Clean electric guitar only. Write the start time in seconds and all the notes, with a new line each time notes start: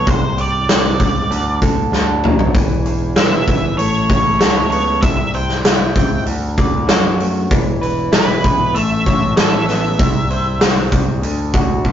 0.06 C3
0.38 G4
0.69 C4
1.01 G3
1.31 D3
1.62 A4
1.93 D4
2.25 F#3
2.56 E3
2.87 G#4
3.18 B3
3.49 E3
3.80 A3
4.10 C#5
4.41 A4
4.72 B3
5.02 C3
5.34 C5
5.65 E4
5.96 C4
6.26 D3
6.58 D5
6.88 F#4
7.20 A3
7.51 E3
7.81 B4
8.12 E4
8.44 B3
8.74 A3
9.06 C#5
9.37 A4
9.68 B3
9.99 C3
10.31 C5
10.62 C4
10.92 G3
11.24 D3
11.54 F#4
11.85 B2